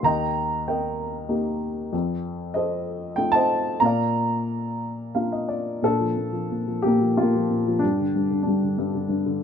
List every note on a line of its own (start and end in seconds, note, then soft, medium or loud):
0.03 1.88 D#2 medium
0.03 0.68 D#5 medium
0.03 0.66 G5 medium
0.03 0.63 A#5 medium
0.68 1.58 A#4 soft
0.68 1.58 D#5 soft
0.68 1.58 G5 medium
1.29 1.91 A#3 soft
1.29 1.91 D#4 soft
1.29 1.91 G4 soft
1.93 3.78 F2 medium
2.54 3.47 A4 soft
2.54 3.34 C5 soft
2.54 3.20 D#5 medium
3.16 3.80 A3 soft
3.16 3.80 D#4 soft
3.16 3.80 F4 soft
3.16 3.34 G5 medium
3.32 3.79 C5 medium
3.32 3.79 D#5 medium
3.32 3.82 A5 loud
3.80 5.80 A#2 medium
3.80 5.10 A#5 medium
3.85 5.13 D5 medium
3.85 5.13 F5 medium
5.15 5.81 A#3 soft
5.15 5.82 D4 soft
5.15 5.82 F4 soft
5.15 5.31 F5 medium
5.32 5.49 D#5 medium
5.48 5.81 D5 medium
5.82 6.15 A#2 soft
5.82 6.88 A4 medium
5.87 6.82 D4 medium
6.00 6.31 F3 soft
6.17 6.50 A#2 soft
6.33 6.66 F3 soft
6.52 6.84 A#2 soft
6.67 7.00 F3 soft
6.82 7.18 A#2 medium
6.82 7.14 G4 medium
6.88 7.17 A#3 medium
7.01 7.34 F3 soft
7.17 7.49 A#2 soft
7.17 7.78 F4 medium
7.23 7.81 A#3 medium
7.35 7.66 F3 soft
7.51 7.82 A#2 soft
7.67 7.83 F3 soft
7.79 8.14 G2 medium
7.79 8.41 D4 medium
7.83 8.42 G3 medium
7.99 8.29 D3 soft
8.15 8.45 G2 soft
8.31 8.61 D3 soft
8.43 8.77 G2 soft
8.43 9.35 D4 medium
8.47 9.37 G3 soft
8.63 8.93 D3 soft
8.78 9.07 G2 medium
8.95 9.25 D3 soft
9.09 9.41 G2 soft
9.26 9.43 D3 medium